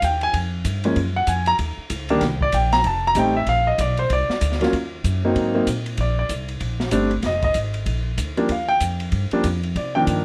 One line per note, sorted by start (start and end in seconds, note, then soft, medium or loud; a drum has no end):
0.02 0.33 D#2 medium
0.02 0.22 G5 medium
0.02 kick soft
0.02 hi-hat pedal medium
0.02 ride medium
0.21 0.34 G#5 medium
0.21 ride soft
0.33 0.64 F2 medium
0.33 kick soft
0.33 ride medium
0.65 0.95 G2 medium
0.65 kick soft
0.65 hi-hat pedal medium
0.65 ride medium
0.84 0.96 F3 medium
0.84 0.96 G#3 medium
0.84 0.96 A#3 medium
0.84 0.96 C#4 medium
0.84 ride soft
0.96 1.26 F#2 medium
0.96 kick soft
0.96 ride medium
1.16 1.28 F#5 medium
1.27 1.58 F2 medium
1.27 1.47 G#5 medium
1.27 kick soft
1.27 hi-hat pedal medium
1.27 ride medium
1.46 1.55 A#5 loud
1.46 ride soft
1.59 1.77 D#2 medium
1.59 kick soft
1.59 ride medium
1.77 muted upright bass stroke soft
1.90 2.21 C#2 medium
1.90 kick soft
1.90 hi-hat pedal soft
1.90 ride medium
2.09 2.21 D#3 medium
2.09 2.21 G3 medium
2.09 2.21 A#3 medium
2.09 2.21 D4 medium
2.09 ride soft
2.21 2.52 C2 medium
2.21 kick soft
2.21 snare soft
2.21 ride medium
2.41 2.54 D5 medium
2.41 kick medium
2.52 2.83 A#1 medium
2.52 2.73 G5 medium
2.52 kick soft
2.52 hi-hat pedal soft
2.52 ride medium
2.72 2.85 A#5 loud
2.72 snare soft
2.72 ride soft
2.84 3.15 F1 medium
2.84 3.05 A5 medium
2.84 kick soft
2.84 ride medium
3.07 3.18 A#5 loud
3.15 3.46 A1 medium
3.15 3.33 G3 medium
3.15 3.34 A3 medium
3.15 3.34 C4 medium
3.15 3.34 D#4 medium
3.15 kick soft
3.15 hi-hat pedal medium
3.15 ride medium
3.19 3.36 G5 medium
3.37 3.48 E5 medium
3.47 3.77 A#1 medium
3.47 3.67 F5 loud
3.47 kick soft
3.47 ride medium
3.67 3.79 D#5 medium
3.78 4.09 B1 medium
3.78 3.99 D5 medium
3.78 kick soft
3.78 hi-hat pedal medium
3.78 ride medium
3.97 4.10 C5 medium
3.97 ride soft
4.10 4.28 C2 medium
4.10 4.70 D5 medium
4.10 kick soft
4.10 ride medium
4.29 muted upright bass stroke soft
4.29 snare soft
4.41 4.72 D2 medium
4.41 kick soft
4.41 hi-hat pedal medium
4.41 ride medium
4.52 snare soft
4.61 4.72 F#3 medium
4.61 4.72 A#3 medium
4.61 4.72 C#4 medium
4.61 4.73 F4 medium
4.61 snare soft
4.61 ride soft
4.73 5.03 D#2 medium
4.73 kick soft
4.73 ride medium
5.04 5.35 F#2 medium
5.04 kick soft
5.04 hi-hat pedal medium
5.04 ride medium
5.24 5.53 F#3 medium
5.24 5.53 A#3 medium
5.24 5.53 C4 medium
5.24 5.54 D#4 medium
5.35 5.66 G#2 medium
5.35 kick soft
5.35 ride medium
5.55 5.66 F#3 medium
5.55 5.66 A#3 medium
5.55 5.66 C4 medium
5.55 5.66 D#4 medium
5.67 5.97 A#2 medium
5.67 kick soft
5.67 hi-hat pedal medium
5.67 ride medium
5.86 ride soft
5.97 6.29 A#1 medium
5.97 6.17 D5 medium
5.97 kick soft
5.97 ride medium
6.19 6.30 D5 medium
6.29 6.60 C2 medium
6.29 kick soft
6.29 hi-hat pedal medium
6.29 ride medium
6.48 ride soft
6.60 6.91 A#1 medium
6.60 kick soft
6.60 ride medium
6.80 snare soft
6.91 7.23 G1 medium
6.91 7.10 G3 medium
6.91 7.09 A3 medium
6.91 7.10 C4 medium
6.91 7.10 D4 medium
6.91 kick soft
6.91 hi-hat pedal medium
6.91 ride medium
7.11 ride soft
7.22 7.54 F1 medium
7.22 7.43 D#5 medium
7.22 kick soft
7.22 snare soft
7.22 ride medium
7.42 7.56 D#5 medium
7.42 kick medium
7.42 ride soft
7.54 7.85 G#1 medium
7.54 kick soft
7.54 hi-hat pedal medium
7.54 ride medium
7.74 ride soft
7.86 8.17 A#1 medium
7.86 kick soft
7.86 ride medium
8.18 8.49 D2 medium
8.18 kick soft
8.18 hi-hat pedal medium
8.18 ride medium
8.37 8.48 F3 medium
8.37 8.49 G3 medium
8.37 8.49 A#3 medium
8.37 8.49 D4 medium
8.37 ride soft
8.49 8.80 D#2 medium
8.49 8.70 F5 medium
8.49 kick soft
8.49 ride medium
8.69 8.81 G5 medium
8.80 9.11 F2 medium
8.80 kick soft
8.80 hi-hat pedal medium
8.80 ride medium
9.00 ride soft
9.12 9.30 G2 medium
9.12 kick soft
9.12 ride medium
9.31 9.43 F3 medium
9.31 9.43 G3 medium
9.31 9.44 A#3 medium
9.31 9.43 D4 medium
9.31 muted upright bass stroke soft
9.31 ride soft
9.44 9.74 F2 medium
9.44 kick soft
9.44 hi-hat pedal medium
9.44 ride medium
9.63 ride soft
9.76 10.06 C3 medium
9.76 9.95 D5 medium
9.76 kick soft
9.76 ride medium
9.95 10.25 D#3 medium
9.95 10.25 F3 medium
9.95 10.25 A#3 medium
9.95 10.25 D4 medium
9.95 10.02 G5 medium
10.07 10.25 G2 medium
10.07 kick soft
10.07 hi-hat pedal soft
10.07 ride medium